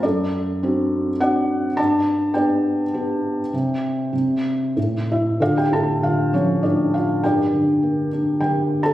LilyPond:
<<
  \new Staff \with { instrumentName = "Felt piano" } { \time 3/4 \key g \dorian \tempo 4 = 101 <a' d''>2 <d'' fis''>4 | <d'' a''>4 <d'' g''>2~ | <d'' g''>2 r8 <e' e''>8 | \key d \minor <f' a' d'' f''>16 <g' g''>16 <a' a''>8 <f' f''>8 <cis' cis''>8 <d' d''>8 <f' f''>8 |
<g' bes' d'' g''>4. r8 <g' bes' g''>8. <a' a''>16 | }
  \new Staff \with { instrumentName = "Felt piano" } { \time 3/4 \key g \dorian fis,4 <c' d' fis'>4 <c' d' fis'>4 | g,4 <b d' g'>4 <b d' g'>4 | c4 c4 a,4 | \key d \minor d,8 a,8 d8 f8 a,4 |
g,8 d8 bes8 d'8 d4 | }
>>